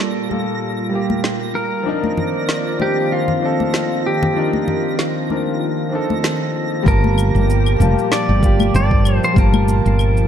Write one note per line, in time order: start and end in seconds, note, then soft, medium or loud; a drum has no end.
0.00 1.82 A#2 medium
0.00 0.29 G3 medium
0.00 1.82 G3 medium
0.00 0.29 A#3 medium
0.00 0.31 F4 medium
0.00 1.82 F4 medium
0.00 0.95 G4 medium
0.00 0.28 A4 medium
0.00 0.27 D5 medium
0.00 6.87 A#6 medium
0.29 0.88 G3 medium
0.29 0.89 A#3 medium
0.29 0.89 F4 medium
0.29 0.90 A4 medium
0.29 high conga medium
0.89 1.81 G3 medium
0.89 1.82 A#3 medium
0.93 1.83 F4 medium
0.93 1.84 G4 medium
1.10 high conga medium
1.24 snare medium
1.55 2.81 A#4 medium
1.83 6.82 D#3 medium
1.83 2.75 F3 medium
1.83 6.82 A#3 medium
1.83 2.76 C4 medium
1.83 6.82 C4 medium
1.83 2.76 D4 medium
1.83 4.34 D5 medium
1.87 2.77 D#4 medium
1.87 6.83 F4 medium
1.87 2.78 A#4 medium
2.04 high conga medium
2.17 low conga medium
2.49 snare medium
2.78 3.38 F3 medium
2.78 3.38 C4 medium
2.78 3.39 D4 medium
2.78 3.39 D#4 medium
2.78 3.39 A#4 medium
2.78 high conga medium
2.82 3.13 G4 medium
3.12 4.02 F4 medium
3.28 low conga medium
3.39 4.31 F3 medium
3.39 4.32 C4 medium
3.39 4.33 D4 medium
3.44 4.34 D#4 medium
3.44 4.34 A4 medium
3.60 high conga medium
3.74 snare medium
4.06 4.95 G4 medium
4.23 low conga medium
4.33 5.25 F3 medium
4.33 5.26 C4 medium
4.33 5.27 D4 medium
4.38 5.27 D#4 medium
4.38 5.28 A#4 medium
4.53 high conga medium
4.68 low conga medium
4.99 snare medium
5.29 5.88 F3 medium
5.29 5.89 C4 medium
5.29 5.89 D4 medium
5.29 5.90 D#4 medium
5.29 5.90 A#4 medium
5.29 high conga medium
5.89 6.81 F3 medium
5.89 6.82 C4 medium
5.89 6.83 D4 medium
5.94 6.83 D#4 medium
5.94 6.84 A4 medium
6.10 high conga medium
6.24 snare loud
6.83 7.30 G1 loud
6.83 10.28 A#2 medium
6.83 10.28 F3 medium
6.83 7.75 G3 medium
6.83 7.76 A#3 medium
6.83 9.34 G4 medium
6.83 10.28 A5 medium
6.83 kick loud
6.87 7.77 F4 medium
6.87 8.16 A#4 medium
6.87 7.78 A5 loud
6.87 shaker soft
7.04 high conga medium
7.18 claves medium
7.18 shaker medium
7.35 7.76 G1 medium
7.35 shaker soft
7.50 shaker soft
7.66 claves medium
7.66 shaker soft
7.79 7.94 F1 medium
7.79 8.38 G3 medium
7.79 8.39 A#3 medium
7.79 8.39 F4 medium
7.79 8.40 A5 medium
7.79 high conga medium
7.79 shaker medium
7.98 shaker soft
8.12 8.75 D5 loud
8.12 snare medium
8.12 claves medium
8.12 shaker soft
8.29 8.70 G1 medium
8.40 9.31 G3 medium
8.40 9.32 A#3 medium
8.40 kick loud
8.40 shaker medium
8.44 9.33 F4 medium
8.44 9.34 G4 medium
8.60 high conga medium
8.60 claves medium
8.60 shaker soft
8.74 9.18 G1 loud
8.74 9.24 D5 loud
8.74 shaker soft
8.91 kick loud
9.05 claves medium
9.05 shaker medium
9.24 9.38 C5 medium
9.24 shaker soft
9.34 9.80 G1 loud
9.34 10.25 G3 medium
9.34 10.26 A#3 medium
9.34 10.28 F4 medium
9.34 10.27 F4 medium
9.34 kick loud
9.34 shaker soft
9.39 10.28 A#4 medium
9.39 10.28 A5 loud
9.54 high conga loud
9.54 claves medium
9.68 shaker medium
9.86 10.27 G1 medium
9.86 shaker soft
9.99 claves medium
9.99 shaker soft
10.17 shaker soft